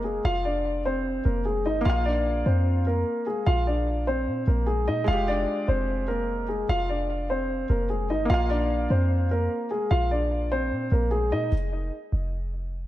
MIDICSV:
0, 0, Header, 1, 4, 480
1, 0, Start_track
1, 0, Tempo, 402685
1, 292, Time_signature, 4, 2, 24, 8
1, 15346, End_track
2, 0, Start_track
2, 0, Title_t, "Grand piano"
2, 0, Program_c, 0, 0
2, 47, Note_on_c, 0, 68, 69
2, 57, Note_on_c, 0, 56, 54
2, 268, Note_off_c, 0, 68, 0
2, 273, Note_off_c, 0, 56, 0
2, 298, Note_on_c, 0, 77, 112
2, 307, Note_on_c, 0, 65, 87
2, 513, Note_off_c, 0, 77, 0
2, 519, Note_off_c, 0, 65, 0
2, 536, Note_on_c, 0, 74, 81
2, 546, Note_on_c, 0, 62, 61
2, 986, Note_off_c, 0, 74, 0
2, 991, Note_off_c, 0, 62, 0
2, 1018, Note_on_c, 0, 72, 83
2, 1027, Note_on_c, 0, 60, 66
2, 1466, Note_off_c, 0, 72, 0
2, 1471, Note_off_c, 0, 60, 0
2, 1489, Note_on_c, 0, 70, 73
2, 1499, Note_on_c, 0, 58, 63
2, 1708, Note_off_c, 0, 70, 0
2, 1714, Note_off_c, 0, 58, 0
2, 1729, Note_on_c, 0, 68, 74
2, 1739, Note_on_c, 0, 56, 54
2, 1949, Note_off_c, 0, 68, 0
2, 1954, Note_off_c, 0, 56, 0
2, 1973, Note_on_c, 0, 75, 83
2, 1982, Note_on_c, 0, 63, 67
2, 2191, Note_off_c, 0, 75, 0
2, 2196, Note_off_c, 0, 63, 0
2, 2209, Note_on_c, 0, 77, 106
2, 2219, Note_on_c, 0, 65, 87
2, 2429, Note_off_c, 0, 77, 0
2, 2434, Note_off_c, 0, 65, 0
2, 2449, Note_on_c, 0, 74, 90
2, 2459, Note_on_c, 0, 62, 69
2, 2902, Note_off_c, 0, 74, 0
2, 2907, Note_off_c, 0, 62, 0
2, 2931, Note_on_c, 0, 72, 72
2, 2941, Note_on_c, 0, 60, 65
2, 3383, Note_off_c, 0, 72, 0
2, 3388, Note_off_c, 0, 60, 0
2, 3418, Note_on_c, 0, 70, 83
2, 3428, Note_on_c, 0, 58, 60
2, 3867, Note_off_c, 0, 70, 0
2, 3872, Note_off_c, 0, 58, 0
2, 3890, Note_on_c, 0, 68, 76
2, 3900, Note_on_c, 0, 56, 54
2, 4109, Note_off_c, 0, 68, 0
2, 4115, Note_off_c, 0, 56, 0
2, 4129, Note_on_c, 0, 77, 99
2, 4139, Note_on_c, 0, 65, 78
2, 4349, Note_off_c, 0, 77, 0
2, 4354, Note_off_c, 0, 65, 0
2, 4375, Note_on_c, 0, 74, 79
2, 4384, Note_on_c, 0, 62, 60
2, 4825, Note_off_c, 0, 74, 0
2, 4830, Note_off_c, 0, 62, 0
2, 4854, Note_on_c, 0, 72, 87
2, 4864, Note_on_c, 0, 60, 64
2, 5304, Note_off_c, 0, 72, 0
2, 5310, Note_off_c, 0, 60, 0
2, 5336, Note_on_c, 0, 70, 72
2, 5346, Note_on_c, 0, 58, 66
2, 5552, Note_off_c, 0, 70, 0
2, 5558, Note_off_c, 0, 58, 0
2, 5559, Note_on_c, 0, 68, 82
2, 5569, Note_on_c, 0, 56, 61
2, 5783, Note_off_c, 0, 68, 0
2, 5789, Note_off_c, 0, 56, 0
2, 5812, Note_on_c, 0, 75, 92
2, 5822, Note_on_c, 0, 63, 73
2, 6030, Note_off_c, 0, 75, 0
2, 6035, Note_off_c, 0, 63, 0
2, 6052, Note_on_c, 0, 77, 105
2, 6061, Note_on_c, 0, 65, 77
2, 6270, Note_off_c, 0, 77, 0
2, 6275, Note_off_c, 0, 65, 0
2, 6293, Note_on_c, 0, 74, 97
2, 6302, Note_on_c, 0, 62, 66
2, 6744, Note_off_c, 0, 74, 0
2, 6749, Note_off_c, 0, 62, 0
2, 6771, Note_on_c, 0, 72, 80
2, 6779, Note_on_c, 0, 60, 63
2, 7222, Note_off_c, 0, 72, 0
2, 7227, Note_off_c, 0, 60, 0
2, 7246, Note_on_c, 0, 70, 88
2, 7256, Note_on_c, 0, 58, 68
2, 7700, Note_off_c, 0, 70, 0
2, 7705, Note_off_c, 0, 58, 0
2, 7729, Note_on_c, 0, 68, 69
2, 7739, Note_on_c, 0, 56, 53
2, 7949, Note_off_c, 0, 68, 0
2, 7954, Note_off_c, 0, 56, 0
2, 7979, Note_on_c, 0, 77, 114
2, 7989, Note_on_c, 0, 65, 85
2, 8194, Note_off_c, 0, 77, 0
2, 8200, Note_off_c, 0, 65, 0
2, 8218, Note_on_c, 0, 74, 83
2, 8227, Note_on_c, 0, 62, 60
2, 8666, Note_off_c, 0, 74, 0
2, 8671, Note_off_c, 0, 62, 0
2, 8699, Note_on_c, 0, 72, 86
2, 8709, Note_on_c, 0, 60, 68
2, 9147, Note_off_c, 0, 72, 0
2, 9152, Note_off_c, 0, 60, 0
2, 9171, Note_on_c, 0, 70, 76
2, 9180, Note_on_c, 0, 58, 64
2, 9389, Note_off_c, 0, 70, 0
2, 9394, Note_off_c, 0, 58, 0
2, 9411, Note_on_c, 0, 68, 76
2, 9421, Note_on_c, 0, 56, 54
2, 9630, Note_off_c, 0, 68, 0
2, 9635, Note_off_c, 0, 56, 0
2, 9654, Note_on_c, 0, 75, 82
2, 9664, Note_on_c, 0, 63, 68
2, 9872, Note_off_c, 0, 75, 0
2, 9877, Note_off_c, 0, 63, 0
2, 9890, Note_on_c, 0, 77, 110
2, 9900, Note_on_c, 0, 65, 87
2, 10109, Note_off_c, 0, 77, 0
2, 10115, Note_off_c, 0, 65, 0
2, 10130, Note_on_c, 0, 74, 92
2, 10139, Note_on_c, 0, 62, 69
2, 10582, Note_off_c, 0, 74, 0
2, 10587, Note_off_c, 0, 62, 0
2, 10613, Note_on_c, 0, 72, 71
2, 10622, Note_on_c, 0, 60, 64
2, 11064, Note_off_c, 0, 72, 0
2, 11069, Note_off_c, 0, 60, 0
2, 11099, Note_on_c, 0, 70, 85
2, 11109, Note_on_c, 0, 58, 61
2, 11547, Note_off_c, 0, 70, 0
2, 11552, Note_off_c, 0, 58, 0
2, 11569, Note_on_c, 0, 68, 73
2, 11579, Note_on_c, 0, 56, 56
2, 11789, Note_off_c, 0, 68, 0
2, 11794, Note_off_c, 0, 56, 0
2, 11809, Note_on_c, 0, 77, 103
2, 11819, Note_on_c, 0, 65, 80
2, 12029, Note_off_c, 0, 77, 0
2, 12034, Note_off_c, 0, 65, 0
2, 12054, Note_on_c, 0, 74, 84
2, 12064, Note_on_c, 0, 62, 65
2, 12504, Note_off_c, 0, 74, 0
2, 12509, Note_off_c, 0, 62, 0
2, 12534, Note_on_c, 0, 72, 89
2, 12544, Note_on_c, 0, 60, 64
2, 12984, Note_off_c, 0, 72, 0
2, 12989, Note_off_c, 0, 60, 0
2, 13016, Note_on_c, 0, 70, 75
2, 13025, Note_on_c, 0, 58, 64
2, 13232, Note_off_c, 0, 70, 0
2, 13237, Note_off_c, 0, 58, 0
2, 13241, Note_on_c, 0, 68, 80
2, 13250, Note_on_c, 0, 56, 62
2, 13464, Note_off_c, 0, 68, 0
2, 13469, Note_off_c, 0, 56, 0
2, 13494, Note_on_c, 0, 75, 93
2, 13503, Note_on_c, 0, 63, 70
2, 13711, Note_off_c, 0, 75, 0
2, 13716, Note_off_c, 0, 63, 0
2, 15346, End_track
3, 0, Start_track
3, 0, Title_t, "Felt piano"
3, 0, Program_c, 1, 0
3, 0, Control_c, 1, 64, 127
3, 0, Note_on_c, 1, 56, 71
3, 0, Note_on_c, 1, 65, 65
3, 0, Note_on_c, 1, 67, 80
3, 2143, Note_off_c, 1, 56, 0
3, 2156, Note_on_c, 1, 58, 69
3, 2169, Note_off_c, 1, 65, 0
3, 2194, Note_off_c, 1, 67, 0
3, 2207, Note_on_c, 1, 65, 63
3, 2229, Control_c, 1, 64, 0
3, 2258, Note_on_c, 1, 77, 81
3, 2453, Control_c, 1, 64, 127
3, 5976, Note_off_c, 1, 58, 0
3, 6002, Note_off_c, 1, 65, 0
3, 6009, Note_on_c, 1, 56, 71
3, 6027, Note_off_c, 1, 77, 0
3, 6060, Note_on_c, 1, 65, 65
3, 6066, Control_c, 1, 64, 0
3, 6110, Note_on_c, 1, 67, 80
3, 6251, Control_c, 1, 64, 127
3, 9823, Note_off_c, 1, 56, 0
3, 9837, Note_on_c, 1, 58, 72
3, 9848, Note_off_c, 1, 65, 0
3, 9873, Note_off_c, 1, 67, 0
3, 9888, Note_on_c, 1, 65, 62
3, 9910, Control_c, 1, 64, 0
3, 9938, Note_on_c, 1, 77, 80
3, 10087, Control_c, 1, 64, 127
3, 13657, Note_off_c, 1, 58, 0
3, 13682, Note_off_c, 1, 65, 0
3, 13708, Note_off_c, 1, 77, 0
3, 13750, Control_c, 1, 64, 0
3, 15346, End_track
4, 0, Start_track
4, 0, Title_t, "808-style bass"
4, 0, Program_c, 2, 38
4, 0, Note_on_c, 2, 29, 100
4, 244, Note_off_c, 2, 29, 0
4, 292, Note_on_c, 2, 29, 115
4, 1444, Note_off_c, 2, 29, 0
4, 1492, Note_on_c, 2, 29, 111
4, 1973, Note_on_c, 2, 31, 98
4, 1990, Note_off_c, 2, 29, 0
4, 2200, Note_off_c, 2, 31, 0
4, 2212, Note_on_c, 2, 34, 113
4, 2903, Note_off_c, 2, 34, 0
4, 2932, Note_on_c, 2, 41, 100
4, 3623, Note_off_c, 2, 41, 0
4, 4132, Note_on_c, 2, 34, 110
4, 5092, Note_on_c, 2, 46, 96
4, 5110, Note_off_c, 2, 34, 0
4, 5320, Note_off_c, 2, 46, 0
4, 5332, Note_on_c, 2, 34, 108
4, 5812, Note_on_c, 2, 46, 97
4, 5830, Note_off_c, 2, 34, 0
4, 6040, Note_off_c, 2, 46, 0
4, 6052, Note_on_c, 2, 29, 113
4, 6513, Note_off_c, 2, 29, 0
4, 6771, Note_on_c, 2, 29, 100
4, 7924, Note_off_c, 2, 29, 0
4, 7972, Note_on_c, 2, 29, 113
4, 9124, Note_off_c, 2, 29, 0
4, 9172, Note_on_c, 2, 29, 108
4, 9652, Note_on_c, 2, 31, 101
4, 9670, Note_off_c, 2, 29, 0
4, 9880, Note_off_c, 2, 31, 0
4, 9893, Note_on_c, 2, 34, 114
4, 10584, Note_off_c, 2, 34, 0
4, 10612, Note_on_c, 2, 41, 103
4, 11303, Note_off_c, 2, 41, 0
4, 11812, Note_on_c, 2, 34, 107
4, 12772, Note_on_c, 2, 46, 97
4, 12790, Note_off_c, 2, 34, 0
4, 13000, Note_off_c, 2, 46, 0
4, 13012, Note_on_c, 2, 34, 108
4, 13491, Note_on_c, 2, 46, 97
4, 13509, Note_off_c, 2, 34, 0
4, 13720, Note_off_c, 2, 46, 0
4, 13731, Note_on_c, 2, 29, 111
4, 14193, Note_off_c, 2, 29, 0
4, 14451, Note_on_c, 2, 29, 99
4, 15346, Note_off_c, 2, 29, 0
4, 15346, End_track
0, 0, End_of_file